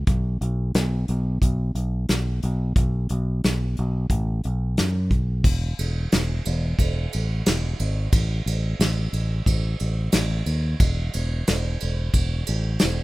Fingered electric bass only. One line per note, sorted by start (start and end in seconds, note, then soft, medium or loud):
0.08 0.39 B1 medium
0.41 0.72 B1 medium
0.75 1.06 B1 medium
1.09 1.40 B1 medium
1.42 1.73 B1 medium
1.75 2.06 B1 medium
2.09 2.40 B1 medium
2.43 2.74 B1 medium
2.76 3.07 B1 medium
3.10 3.41 B1 medium
3.45 3.75 B1 medium
3.79 4.09 B1 medium
4.10 4.41 A1 medium
4.45 4.75 B1 medium
4.80 5.09 F#2 medium
5.11 5.42 B1 medium
5.45 5.72 E1 medium
5.79 6.05 E1 medium
6.13 6.39 E1 medium
6.47 6.73 E1 medium
6.79 7.06 E1 medium
7.15 7.41 A1 medium
7.47 7.74 E1 medium
7.80 8.07 G#1 medium
8.13 8.40 A1 medium
8.46 8.73 A1 medium
8.79 9.07 A1 medium
9.13 9.40 A1 medium
9.47 9.74 A1 medium
9.81 10.08 A1 medium
10.14 10.41 A1 medium
10.46 10.74 D#2 medium
10.80 11.08 E1 medium
11.15 11.42 E1 medium
11.48 11.75 E1 medium
11.82 12.09 E1 medium
12.15 12.42 E1 medium
12.49 12.76 A1 medium
12.83 13.03 E1 medium